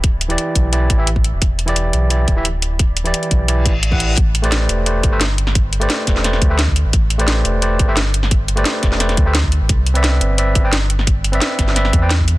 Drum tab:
HH |x-xxx-x-x-x-x-x-|x-xxx-x-x-x-x-x-|x-xxxxx-x-x-x-x-|x-xxx-x-x-x-x-x-|
SD |----------------|----------------|----------------|----o-------o--o|
BD |o-----o---o--o--|o---------o-----|o-----o---o--o--|o---------o-----|

HH |x-xxx-x-x-x-x-x-|x-xxx-x-x-x-x-x-|x-xxx-x-xxx-x-x-|x-xxx-x-x-x-x-x-|
SD |----o-oooo--o---|----o-------o--o|----o-oooo--o---|----o-------o--o|
BD |o-----o---o--o--|o---------o-----|o-----o---o--o--|o---------o-----|

HH |x-xxx-x-x-x-x-x-|
SD |----o-oooo--o---|
BD |o-----o---o--o--|